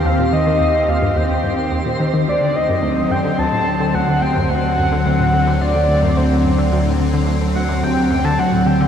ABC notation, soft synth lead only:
X:1
M:4/4
L:1/16
Q:1/4=108
K:Dphr
V:1 name="Soft synth lead"
f2 e4 f2 g6 z2 | d2 e4 g2 a4 ^f2 g2 | ^f8 d4 c3 z | z6 ^f2 g3 a f2 g2 |]